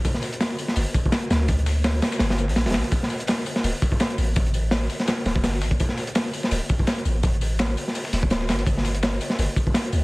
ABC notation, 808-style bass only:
X:1
M:4/4
L:1/16
Q:"Swing 16ths" 1/4=167
K:Gdor
V:1 name="808-style bass" clef=bass
z8 G,,, z4 z D,,2- | D,,6 z2 G,,,3 B,,,2 D,,, B,,, z | z8 D,,, z4 z A,,,2- | A,,,6 z4 D,,,2 G,,,2 A,,, z |
z8 D,,, z4 z A,,,2- | A,,,6 z4 D,,,4 G,,,2- | G,,,6 z2 G,,, z4 z D,,2 |]